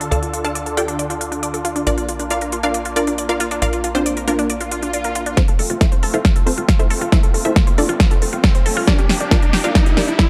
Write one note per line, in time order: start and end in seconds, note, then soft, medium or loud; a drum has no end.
0.00 1.83 D3 medium
0.00 5.33 D4 medium
0.00 0.08 D4 loud
0.00 5.33 F4 medium
0.00 1.83 A4 medium
0.00 closed hi-hat soft
0.11 1.85 D2 medium
0.11 0.41 A4 medium
0.11 0.19 D5 medium
0.11 0.41 D5 medium
0.11 0.41 F5 medium
0.11 0.41 A5 medium
0.11 closed hi-hat medium
0.22 0.27 F4 medium
0.22 closed hi-hat medium
0.33 0.38 F4 medium
0.33 closed hi-hat medium
0.44 0.49 D4 medium
0.44 0.74 A4 medium
0.44 0.74 D5 medium
0.44 0.74 F5 medium
0.44 0.74 A5 medium
0.44 closed hi-hat soft
0.55 0.60 D5 medium
0.55 closed hi-hat medium
0.66 0.71 A4 medium
0.66 closed hi-hat soft
0.77 0.82 F4 loud
0.77 1.78 G4 medium
0.77 1.78 A4 medium
0.77 1.78 D5 medium
0.77 1.78 G5 medium
0.77 closed hi-hat medium
0.88 0.95 D4 loud
0.88 closed hi-hat medium
0.99 1.06 D5 medium
0.99 closed hi-hat medium
1.10 1.15 F4 medium
1.10 closed hi-hat soft
1.21 1.26 F4 medium
1.21 closed hi-hat medium
1.32 1.37 D4 medium
1.32 closed hi-hat soft
1.43 1.48 D5 medium
1.43 closed hi-hat medium
1.54 1.59 A4 medium
1.54 closed hi-hat medium
1.65 1.70 F4 loud
1.65 closed hi-hat medium
1.76 1.83 D4 medium
1.76 closed hi-hat medium
1.87 3.60 A#1 medium
1.87 5.34 A#3 medium
1.87 2.25 D4 medium
1.87 2.25 F4 medium
1.87 2.26 A#4 medium
1.87 1.94 D5 medium
1.87 2.25 D5 medium
1.87 closed hi-hat medium
1.98 2.03 F4 medium
1.98 closed hi-hat medium
2.09 2.14 F4 medium
2.09 closed hi-hat medium
2.19 2.25 D4 medium
2.19 closed hi-hat medium
2.30 2.60 F4 medium
2.30 2.60 A#4 medium
2.30 2.35 D5 medium
2.30 2.60 D5 medium
2.30 2.60 F5 medium
2.30 closed hi-hat medium
2.41 2.46 A#4 medium
2.41 closed hi-hat medium
2.52 2.57 F4 loud
2.52 closed hi-hat medium
2.63 2.71 D4 loud
2.63 2.92 F4 medium
2.63 2.92 A#4 medium
2.63 2.92 D5 medium
2.63 2.92 F5 medium
2.63 closed hi-hat soft
2.74 2.82 D5 medium
2.74 closed hi-hat medium
2.85 2.90 F4 medium
2.85 closed hi-hat medium
2.96 3.25 D4 medium
2.96 3.25 F4 medium
2.96 3.01 F4 medium
2.96 3.25 A#4 medium
2.96 3.25 D5 medium
2.96 closed hi-hat medium
3.07 3.12 D4 medium
3.07 closed hi-hat soft
3.18 3.23 D5 medium
3.18 closed hi-hat medium
3.29 3.58 F4 medium
3.29 3.58 A#4 medium
3.29 3.34 A#4 medium
3.29 3.58 D5 medium
3.29 3.58 F5 medium
3.29 closed hi-hat medium
3.40 3.45 F4 loud
3.40 closed hi-hat medium
3.51 3.58 D4 loud
3.51 closed hi-hat medium
3.62 5.35 A#1 medium
3.62 3.91 F4 medium
3.62 3.91 A#4 medium
3.62 3.69 D5 medium
3.62 3.91 D5 medium
3.62 3.91 F5 medium
3.62 closed hi-hat medium
3.73 3.78 F4 medium
3.73 closed hi-hat medium
3.84 3.89 F4 medium
3.84 closed hi-hat medium
3.95 4.24 C4 medium
3.95 4.24 D4 medium
3.95 4.00 D4 medium
3.95 4.24 F4 medium
3.95 4.24 C5 medium
3.95 closed hi-hat medium
4.06 4.11 D5 medium
4.06 closed hi-hat medium
4.17 4.22 A#4 medium
4.17 closed hi-hat medium
4.28 5.28 A#3 medium
4.28 5.28 D4 medium
4.28 5.28 F4 medium
4.28 4.33 F4 loud
4.28 5.28 A#4 medium
4.28 closed hi-hat medium
4.39 4.46 D4 loud
4.39 closed hi-hat medium
4.50 4.57 D5 medium
4.50 closed hi-hat medium
4.50 swell medium
4.61 4.65 F4 medium
4.61 closed hi-hat medium
4.71 4.76 F4 medium
4.71 closed hi-hat medium
4.83 4.87 D4 medium
4.83 closed hi-hat medium
4.93 4.98 D5 medium
4.93 closed hi-hat medium
5.04 5.09 A#4 medium
5.04 closed hi-hat medium
5.15 5.20 F4 loud
5.15 closed hi-hat medium
5.26 5.33 D4 loud
5.26 closed hi-hat medium
5.37 8.84 A3 medium
5.37 5.76 C4 medium
5.37 8.84 C4 medium
5.37 5.76 F4 medium
5.37 8.84 F4 medium
5.37 5.76 A4 medium
5.37 5.76 C5 loud
5.37 5.44 F5 medium
5.37 kick loud
5.37 snare soft
5.37 closed hi-hat medium
5.37 riser medium
5.48 5.55 F1 medium
5.48 5.53 A4 medium
5.48 closed hi-hat medium
5.59 5.66 F1 loud
5.59 5.64 A4 medium
5.59 open hi-hat loud
5.70 5.77 F1 loud
5.70 5.75 F4 medium
5.70 closed hi-hat medium
5.81 6.10 E4 medium
5.81 6.10 A4 medium
5.81 6.10 C5 medium
5.81 6.10 E5 medium
5.81 5.86 F5 medium
5.81 kick loud
5.81 snare medium
5.81 closed hi-hat medium
5.92 5.99 F1 medium
5.92 5.97 C5 medium
5.92 closed hi-hat medium
6.03 6.10 F1 loud
6.03 6.08 A4 loud
6.03 open hi-hat loud
6.14 6.21 G1 medium
6.14 6.43 E4 medium
6.14 6.21 F4 loud
6.14 6.43 A4 medium
6.14 6.43 C5 medium
6.14 6.43 E5 medium
6.14 closed hi-hat medium
6.25 6.32 F5 medium
6.25 kick loud
6.25 snare medium
6.25 closed hi-hat medium
6.36 6.43 F1 medium
6.36 6.41 A4 medium
6.36 closed hi-hat medium
6.46 6.54 F1 loud
6.46 6.76 C4 medium
6.46 6.76 F4 medium
6.46 6.75 A4 medium
6.46 6.52 A4 medium
6.46 6.76 C5 medium
6.46 open hi-hat loud
6.58 6.65 F1 medium
6.58 6.62 F4 medium
6.58 closed hi-hat medium
6.68 6.73 F5 medium
6.68 kick loud
6.68 snare medium
6.68 closed hi-hat medium
6.79 6.87 F1 medium
6.79 7.08 E4 medium
6.79 7.08 A4 medium
6.79 7.08 C5 medium
6.79 6.84 C5 medium
6.79 7.08 E5 medium
6.79 closed hi-hat medium
6.90 6.98 F1 loud
6.90 6.95 A4 loud
6.90 open hi-hat loud
7.01 7.09 F1 medium
7.01 7.09 F4 loud
7.01 closed hi-hat medium
7.12 7.41 E4 medium
7.12 7.41 A4 medium
7.12 7.41 C5 medium
7.12 7.41 E5 medium
7.12 7.20 F5 medium
7.12 kick loud
7.12 snare medium
7.12 closed hi-hat medium
7.23 7.30 F1 medium
7.23 7.28 A4 medium
7.23 closed hi-hat medium
7.34 7.41 F1 loud
7.34 7.39 A4 medium
7.34 open hi-hat loud
7.45 7.52 F1 medium
7.45 7.74 E4 medium
7.45 7.50 F4 medium
7.45 7.74 A4 medium
7.45 7.74 C5 medium
7.45 7.74 E5 medium
7.45 closed hi-hat medium
7.56 7.61 F5 medium
7.56 kick loud
7.56 snare medium
7.56 closed hi-hat medium
7.67 7.74 F1 medium
7.67 7.72 C5 medium
7.67 closed hi-hat medium
7.78 7.85 F1 loud
7.78 8.79 D4 medium
7.78 8.79 F4 medium
7.78 7.83 A4 loud
7.78 8.79 A4 medium
7.78 8.79 D5 medium
7.78 open hi-hat loud
7.89 7.96 G1 medium
7.89 7.96 F4 loud
7.89 closed hi-hat medium
8.00 8.07 F5 medium
8.00 kick loud
8.00 snare medium
8.00 closed hi-hat medium
8.11 8.18 F1 medium
8.11 8.16 A4 medium
8.11 closed hi-hat medium
8.22 8.29 F1 loud
8.22 8.27 A4 medium
8.22 open hi-hat loud
8.33 8.40 F1 medium
8.33 8.38 F4 medium
8.33 closed hi-hat medium
8.44 8.49 F5 medium
8.44 kick loud
8.44 snare medium
8.44 closed hi-hat medium
8.55 8.62 F1 medium
8.55 8.60 C5 medium
8.55 closed hi-hat medium
8.66 8.73 F1 loud
8.66 8.71 A4 loud
8.66 open hi-hat loud
8.77 8.84 F1 medium
8.77 8.84 F4 loud
8.77 open hi-hat medium
8.87 10.29 A#3 medium
8.87 10.29 D4 medium
8.87 9.26 D4 medium
8.87 9.26 G4 medium
8.87 10.29 G4 medium
8.87 9.26 A#4 medium
8.87 9.26 D5 loud
8.87 8.95 D5 medium
8.87 kick loud
8.87 snare medium
8.87 closed hi-hat medium
8.98 9.06 G1 medium
8.98 9.03 G4 medium
8.98 closed hi-hat medium
9.09 9.17 G1 loud
9.09 9.14 G4 medium
9.09 snare medium
9.09 open hi-hat loud
9.20 9.28 G1 loud
9.20 9.25 D4 medium
9.20 closed hi-hat medium
9.31 9.60 F4 medium
9.31 9.60 A#4 medium
9.31 9.60 D5 medium
9.31 9.36 D5 medium
9.31 9.60 F5 medium
9.31 kick loud
9.31 snare medium
9.31 closed hi-hat medium
9.42 9.49 G1 medium
9.42 9.47 A#4 medium
9.42 closed hi-hat soft
9.53 9.60 G1 loud
9.53 9.58 G4 loud
9.53 snare medium
9.53 open hi-hat loud
9.64 9.71 A1 medium
9.64 9.71 D4 loud
9.64 9.93 F4 medium
9.64 9.93 A#4 medium
9.64 9.93 D5 medium
9.64 9.93 F5 loud
9.64 closed hi-hat medium
9.75 9.82 D5 medium
9.75 kick loud
9.75 snare medium
9.75 closed hi-hat medium
9.86 9.93 G1 medium
9.86 9.91 G4 medium
9.86 closed hi-hat medium
9.97 10.04 G1 loud
9.97 10.26 D4 medium
9.97 10.26 G4 medium
9.97 10.02 G4 medium
9.97 10.26 A#4 medium
9.97 10.26 D5 loud
9.97 snare medium
9.97 open hi-hat loud
10.08 10.15 G1 medium
10.08 10.13 D4 medium
10.08 closed hi-hat soft
10.19 10.24 D5 medium
10.19 kick loud
10.19 snare medium
10.19 closed hi-hat medium